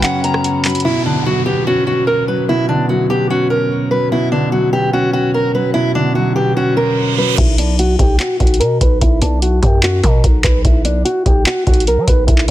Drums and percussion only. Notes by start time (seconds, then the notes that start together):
0.03 clap, closed hi-hat
0.24 closed hi-hat
0.34 cross-stick
0.44 closed hi-hat
0.65 clap, closed hi-hat, open hi-hat
0.70 closed hi-hat
0.75 closed hi-hat
0.80 closed hi-hat
7.38 kick, closed hi-hat, crash
7.58 closed hi-hat
7.79 closed hi-hat
7.99 kick, closed hi-hat
8.20 clap, closed hi-hat
8.40 kick, closed hi-hat
8.47 closed hi-hat
8.54 closed hi-hat
8.61 closed hi-hat
8.81 kick, closed hi-hat
9.01 kick, closed hi-hat
9.22 closed hi-hat
9.42 closed hi-hat
9.63 kick, closed hi-hat
9.83 clap, closed hi-hat
10.04 kick, closed hi-hat
10.24 kick, closed hi-hat
10.44 kick, clap, closed hi-hat
10.65 kick, closed hi-hat
10.85 closed hi-hat
11.06 closed hi-hat
11.26 kick, closed hi-hat
11.46 clap, closed hi-hat
11.67 kick, closed hi-hat
11.74 closed hi-hat
11.80 closed hi-hat
11.87 closed hi-hat
12.07 kick, closed hi-hat
12.28 kick, closed hi-hat
12.38 clap